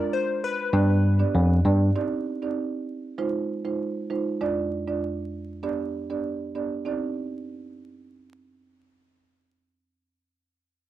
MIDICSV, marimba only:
0, 0, Header, 1, 2, 480
1, 0, Start_track
1, 0, Key_signature, -3, "minor"
1, 0, Tempo, 612245
1, 1535, Time_signature, 4, 2, 24, 8
1, 8541, End_track
2, 0, Start_track
2, 0, Title_t, "Marimba"
2, 0, Program_c, 0, 12
2, 0, Note_on_c, 0, 56, 79
2, 0, Note_on_c, 0, 62, 69
2, 0, Note_on_c, 0, 65, 72
2, 0, Note_on_c, 0, 74, 86
2, 157, Note_off_c, 0, 56, 0
2, 157, Note_off_c, 0, 62, 0
2, 158, Note_off_c, 0, 65, 0
2, 159, Note_off_c, 0, 74, 0
2, 571, Note_on_c, 0, 59, 98
2, 572, Note_on_c, 0, 62, 92
2, 574, Note_on_c, 0, 67, 85
2, 575, Note_on_c, 0, 74, 109
2, 908, Note_off_c, 0, 59, 0
2, 909, Note_off_c, 0, 62, 0
2, 909, Note_off_c, 0, 67, 0
2, 910, Note_off_c, 0, 74, 0
2, 935, Note_on_c, 0, 59, 83
2, 937, Note_on_c, 0, 62, 73
2, 938, Note_on_c, 0, 67, 73
2, 940, Note_on_c, 0, 74, 89
2, 1265, Note_off_c, 0, 59, 0
2, 1266, Note_off_c, 0, 62, 0
2, 1267, Note_off_c, 0, 67, 0
2, 1267, Note_off_c, 0, 74, 0
2, 1292, Note_on_c, 0, 59, 79
2, 1293, Note_on_c, 0, 62, 72
2, 1295, Note_on_c, 0, 67, 74
2, 1297, Note_on_c, 0, 74, 87
2, 1515, Note_off_c, 0, 59, 0
2, 1516, Note_off_c, 0, 62, 0
2, 1517, Note_off_c, 0, 67, 0
2, 1518, Note_off_c, 0, 74, 0
2, 1533, Note_on_c, 0, 60, 93
2, 1533, Note_on_c, 0, 63, 86
2, 1535, Note_on_c, 0, 67, 89
2, 1537, Note_on_c, 0, 74, 101
2, 1869, Note_off_c, 0, 60, 0
2, 1869, Note_off_c, 0, 63, 0
2, 1870, Note_off_c, 0, 67, 0
2, 1871, Note_off_c, 0, 74, 0
2, 1898, Note_on_c, 0, 60, 75
2, 1900, Note_on_c, 0, 63, 68
2, 1901, Note_on_c, 0, 67, 69
2, 1903, Note_on_c, 0, 74, 81
2, 2077, Note_off_c, 0, 60, 0
2, 2078, Note_off_c, 0, 63, 0
2, 2078, Note_off_c, 0, 67, 0
2, 2079, Note_off_c, 0, 74, 0
2, 2494, Note_on_c, 0, 56, 89
2, 2495, Note_on_c, 0, 63, 86
2, 2497, Note_on_c, 0, 65, 87
2, 2499, Note_on_c, 0, 72, 102
2, 2830, Note_off_c, 0, 56, 0
2, 2830, Note_off_c, 0, 63, 0
2, 2831, Note_off_c, 0, 65, 0
2, 2832, Note_off_c, 0, 72, 0
2, 2859, Note_on_c, 0, 56, 75
2, 2860, Note_on_c, 0, 63, 69
2, 2861, Note_on_c, 0, 65, 70
2, 2863, Note_on_c, 0, 72, 86
2, 3187, Note_off_c, 0, 56, 0
2, 3188, Note_off_c, 0, 63, 0
2, 3188, Note_off_c, 0, 65, 0
2, 3189, Note_off_c, 0, 72, 0
2, 3213, Note_on_c, 0, 56, 75
2, 3214, Note_on_c, 0, 63, 72
2, 3215, Note_on_c, 0, 65, 72
2, 3218, Note_on_c, 0, 72, 82
2, 3436, Note_off_c, 0, 56, 0
2, 3436, Note_off_c, 0, 63, 0
2, 3437, Note_off_c, 0, 65, 0
2, 3438, Note_off_c, 0, 72, 0
2, 3455, Note_on_c, 0, 41, 93
2, 3456, Note_on_c, 0, 56, 85
2, 3457, Note_on_c, 0, 62, 85
2, 3458, Note_on_c, 0, 65, 83
2, 3459, Note_on_c, 0, 74, 106
2, 3790, Note_off_c, 0, 41, 0
2, 3790, Note_off_c, 0, 56, 0
2, 3791, Note_off_c, 0, 62, 0
2, 3791, Note_off_c, 0, 65, 0
2, 3792, Note_off_c, 0, 74, 0
2, 3820, Note_on_c, 0, 41, 72
2, 3821, Note_on_c, 0, 56, 66
2, 3822, Note_on_c, 0, 62, 69
2, 3824, Note_on_c, 0, 65, 63
2, 3824, Note_on_c, 0, 74, 81
2, 3998, Note_off_c, 0, 41, 0
2, 3998, Note_off_c, 0, 56, 0
2, 3998, Note_off_c, 0, 62, 0
2, 3999, Note_off_c, 0, 74, 0
2, 4000, Note_off_c, 0, 65, 0
2, 4414, Note_on_c, 0, 59, 91
2, 4415, Note_on_c, 0, 62, 80
2, 4417, Note_on_c, 0, 67, 84
2, 4418, Note_on_c, 0, 74, 101
2, 4749, Note_off_c, 0, 59, 0
2, 4750, Note_off_c, 0, 62, 0
2, 4751, Note_off_c, 0, 67, 0
2, 4751, Note_off_c, 0, 74, 0
2, 4780, Note_on_c, 0, 59, 72
2, 4782, Note_on_c, 0, 62, 68
2, 4783, Note_on_c, 0, 67, 68
2, 4785, Note_on_c, 0, 74, 79
2, 5108, Note_off_c, 0, 59, 0
2, 5109, Note_off_c, 0, 62, 0
2, 5109, Note_off_c, 0, 67, 0
2, 5110, Note_off_c, 0, 74, 0
2, 5134, Note_on_c, 0, 59, 74
2, 5136, Note_on_c, 0, 62, 65
2, 5137, Note_on_c, 0, 67, 65
2, 5139, Note_on_c, 0, 74, 82
2, 5356, Note_off_c, 0, 59, 0
2, 5357, Note_off_c, 0, 62, 0
2, 5358, Note_off_c, 0, 67, 0
2, 5359, Note_off_c, 0, 74, 0
2, 5371, Note_on_c, 0, 60, 86
2, 5375, Note_on_c, 0, 63, 75
2, 5377, Note_on_c, 0, 67, 77
2, 5380, Note_on_c, 0, 74, 92
2, 7922, Note_off_c, 0, 60, 0
2, 7925, Note_off_c, 0, 63, 0
2, 7928, Note_off_c, 0, 67, 0
2, 7931, Note_off_c, 0, 74, 0
2, 8541, End_track
0, 0, End_of_file